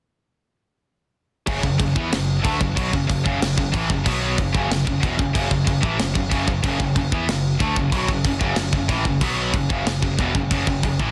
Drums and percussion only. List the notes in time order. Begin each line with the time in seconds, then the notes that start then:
1.47 kick, crash
1.63 kick
1.80 kick, crash
1.96 kick
2.13 snare, crash
2.45 kick, crash
2.61 kick
2.77 kick, crash
2.93 kick
3.10 kick, crash
3.26 kick
3.42 snare, crash
3.58 kick
3.74 kick, crash
3.90 kick
4.06 kick, crash
4.38 kick, crash
4.55 kick
4.72 snare, crash
4.87 kick
5.03 kick, crash
5.19 kick
5.35 kick, crash
5.51 kick
5.67 kick, crash
5.83 kick
6.00 snare, crash
6.15 kick
6.31 kick, crash
6.48 kick
6.64 kick, crash
6.80 kick
6.96 kick, crash
7.12 kick
7.29 snare, crash
7.60 kick, crash
7.76 kick
7.92 kick, crash
8.08 kick
8.25 kick, crash
8.41 kick
8.56 snare, crash
8.73 kick
8.89 kick, crash
9.05 kick
9.21 kick, crash
9.54 kick, crash
9.70 kick
9.87 snare, crash
10.03 kick
10.19 kick, crash
10.35 kick
10.51 kick, crash
10.67 kick
10.83 kick, crash
10.99 kick